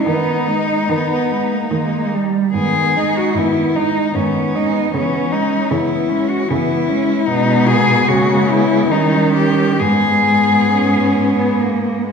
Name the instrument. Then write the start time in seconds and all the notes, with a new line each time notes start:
cello
0.07 D#3 B3 D#4
0.48 G#3 D#4
0.89 D#3 B3
1.31 G#3
1.53 A#3
1.71 D#3 G#3 A#3
2.14 G3
2.53 G#2 D#3 B3 G#4
2.96 G#3 D#4
3.17 F#4
3.35 G#2 D#3 B3 E4
3.76 G#3 D#4
4.15 G#2 D#3 B3 C#4
4.55 G#3 D#4
4.74 B3
4.92 C#3 E3 B3 C#4
5.32 G#3 C#4 D#4
5.70 C#3 E3 B3 E4
6.08 G#3 C#4
6.30 F#4
6.49 C#3 E3 B3 E4
6.89 G#3 C#4
7.28 B2 G#3 B3 D#4
7.68 G#4
8.08 C#3 G#3 A#3 F#4
8.50 B3 E4
8.91 D#3 G3 C#4 D#4
9.35 G4
9.79 G#2 G#3 B3 G#4
10.71 C#4
11.39 B3
11.60 A#3
12.04 G#3